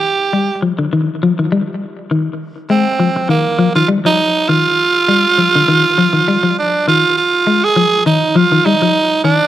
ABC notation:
X:1
M:4/4
L:1/16
Q:"Swing 16ths" 1/4=101
K:Fdor
V:1 name="Tenor saxophone"
G4 z12 | z2 C4 B,3 F2 E3 F2- | F12 D2 F2 | F3 A3 E2 F2 E4 D2 |]
V:2 name="Clean electric guitar" clef=bass
z2 G,2 F, D, E,2 F, E, G, z3 E,2 | z2 A,2 F, z E,2 F, E, G, F,2 z E,2 | z2 G,2 F, D, E,2 F, E, G, F,2 z E,2 | z2 A,2 F, z E,2 F, E, G, F,2 z E,2 |]